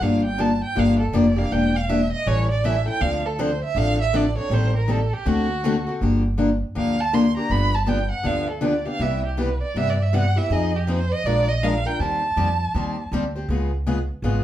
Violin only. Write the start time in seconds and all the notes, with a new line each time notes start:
0.03 F5
0.25 G5
0.40 A5
0.64 G5
0.79 F5
0.99 A4
1.15 D5
1.38 F5
1.52 G5
1.76 F5
1.89 E5
2.12 D#5
2.27 C#5
2.51 D5
2.65 E5
2.88 G5
3.01 F5
3.26 A4
3.40 C5
3.64 E5
3.78 F5
4.01 E5
4.16 D5
4.38 C#5
4.53 C5
4.76 A#4
4.90 A4
5.13 G4
5.28 F#4
6.78 F5
7.00 A5
7.14 C6
7.37 A#5
7.51 B5
7.74 A5
7.88 G5
8.11 F#5
8.26 F5
8.50 A4
8.65 D5
8.88 F5
9.02 E5
9.26 G4
9.41 B4
9.62 D5
9.77 E5
9.90 D5
10.02 E5
10.14 F#5
10.38 E5
10.53 D#5
10.75 G4
10.90 C5
11.12 D#5
11.26 D5
11.48 D#5
11.63 F5
11.86 G5
12.00 A5